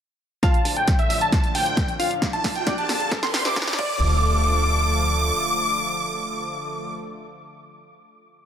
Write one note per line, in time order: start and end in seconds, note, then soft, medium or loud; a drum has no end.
0.43 2.20 A2 medium
0.43 3.09 D3 medium
0.43 3.09 F3 medium
0.43 2.20 D4 medium
0.43 2.20 F4 medium
0.43 1.24 F4 medium
0.43 1.24 F5 loud
0.43 0.71 A5 medium
0.43 0.71 A5 loud
0.43 kick loud
0.43 snare soft
0.43 closed hi-hat loud
0.43 riser medium
0.54 closed hi-hat medium
0.65 0.82 D2 loud
0.65 open hi-hat loud
0.76 0.95 G5 medium
0.76 closed hi-hat medium
0.88 kick loud
0.88 snare medium
0.88 closed hi-hat medium
0.99 1.17 E5 medium
0.99 closed hi-hat medium
1.10 1.26 A1 medium
1.10 open hi-hat loud
1.21 1.49 A5 medium
1.21 1.49 A5 loud
1.21 closed hi-hat medium
1.32 kick loud
1.32 snare medium
1.32 closed hi-hat medium
1.44 closed hi-hat medium
1.55 1.71 D2 medium
1.55 1.92 G5 medium
1.55 1.92 G5 loud
1.55 open hi-hat loud
1.66 closed hi-hat medium
1.77 kick loud
1.77 snare medium
1.77 closed hi-hat loud
1.88 closed hi-hat medium
1.99 2.16 D2 medium
1.99 2.58 F4 medium
1.99 2.58 F5 medium
1.99 open hi-hat loud
2.11 closed hi-hat medium
2.22 3.11 A#2 medium
2.22 3.11 D4 medium
2.22 3.11 F4 medium
2.22 kick loud
2.22 snare medium
2.22 closed hi-hat loud
2.33 2.52 A5 medium
2.33 closed hi-hat medium
2.44 2.61 A#1 loud
2.44 kick medium
2.44 snare medium
2.44 open hi-hat loud
2.56 2.74 G5 medium
2.56 closed hi-hat medium
2.67 3.79 D4 medium
2.67 3.78 D5 medium
2.67 kick loud
2.67 snare medium
2.67 closed hi-hat medium
2.78 3.15 A5 loud
2.78 closed hi-hat medium
2.89 3.06 F2 medium
2.89 snare medium
2.89 open hi-hat loud
3.00 closed hi-hat medium
3.11 3.78 C3 medium
3.11 3.78 E3 medium
3.11 3.78 G3 medium
3.11 3.78 E4 medium
3.11 3.78 G4 medium
3.11 kick loud
3.11 snare medium
3.11 closed hi-hat medium
3.23 3.41 C6 medium
3.23 snare medium
3.23 closed hi-hat medium
3.34 3.50 C2 medium
3.34 snare loud
3.34 open hi-hat loud
3.45 3.73 D6 loud
3.45 snare medium
3.45 closed hi-hat medium
3.56 kick loud
3.56 snare loud
3.56 closed hi-hat loud
3.62 snare medium
3.67 snare loud
3.67 closed hi-hat medium
3.73 snare loud
3.79 5.32 D2 loud
3.79 6.93 D3 medium
3.79 6.93 F3 medium
3.79 6.93 A3 medium
3.79 6.93 F4 medium
3.79 6.93 A4 medium
3.79 6.93 D5 medium
3.79 6.93 D6 loud
3.79 kick loud
3.79 crash medium
3.79 impact medium